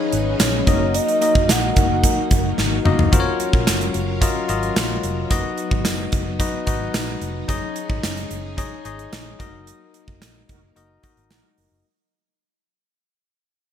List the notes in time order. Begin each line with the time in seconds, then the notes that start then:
Already playing: F#3 C#4 D#4 G#4 B4 C#5 D#5 F5
0.12 G#1, closed hi-hat
0.40 A#1 C#5, snare, closed hi-hat, tambourine
0.66 F#1 A#3 D#4 F#4 A#4 D#5, kick, closed hi-hat
0.94 D#5, closed hi-hat
1.08 closed hi-hat
1.21 A#3 D#4 F#4 A#4 D#5, closed hi-hat
1.35 F#1, kick
1.49 A#1 F#5, snare, closed hi-hat, tambourine
1.76 F#1, kick, closed hi-hat
2.04 kick, closed hi-hat
2.31 F#1, kick, closed hi-hat
2.58 G#1, snare
2.85 F1 A#3 D#4 F#4 A#4 D#5, mid tom
2.99 floor tom
3.12 F#1 F#3 C#4 F4 F#4 A#4 C5 F5, kick, closed hi-hat
3.20 C#5
3.40 closed hi-hat
3.53 A#1, kick
3.67 F#1, snare, closed hi-hat, tambourine
3.81 closed hi-hat
3.94 F#1, closed hi-hat
4.21 F4 F#4 A#4 D#5, kick, closed hi-hat
4.48 G#1 F4 F#4 A#4 D#5, closed hi-hat
4.63 closed hi-hat
4.76 A#1, snare, closed hi-hat, tambourine
5.03 F1, closed hi-hat
5.30 F#1 B3 D#4 F#4 B4 D#5, kick, closed hi-hat
5.58 closed hi-hat
5.71 G#1, kick
5.85 F#1, snare, closed hi-hat, tambourine
6.12 F#1, kick, closed hi-hat
6.39 D#4 F#4 B4 D#5, kick, closed hi-hat
6.66 G#1 D#4 F#4 B4 D#5, kick, closed hi-hat
6.94 A#1, snare, closed hi-hat, tambourine
7.21 F1, closed hi-hat
7.48 F#1 C#4 D#4 G#4 C#5 D#5, kick, closed hi-hat
7.76 closed hi-hat
7.90 G#1, kick
8.03 F#1, snare, closed hi-hat, tambourine
8.17 closed hi-hat
8.31 F#1, closed hi-hat
8.57 D#4 G#4 C#5 D#5, kick, closed hi-hat
8.85 G#1 D#4 G#4 C#5 D#5, closed hi-hat
8.99 closed hi-hat
9.12 A#1, snare, closed hi-hat, tambourine
9.39 F#1 A#3 D#4 F#4 A#4 D#5, kick, closed hi-hat
9.67 closed hi-hat
9.94 closed hi-hat
10.08 F#1, kick
10.22 A#1, snare, closed hi-hat, tambourine
10.49 F#1 D#4 F#4 A#4, kick, closed hi-hat
10.76 F#1 D#4 F#4 A#4 D#5, closed hi-hat
11.03 D#4 F#4 A#4 D#5, muted fingered electric bass stroke, kick, closed hi-hat
11.17 G#1, closed hi-hat
11.30 A#1 D#4 F#4 A#4, snare, closed hi-hat, tambourine
11.58 F#1, open hi-hat
11.71 F#1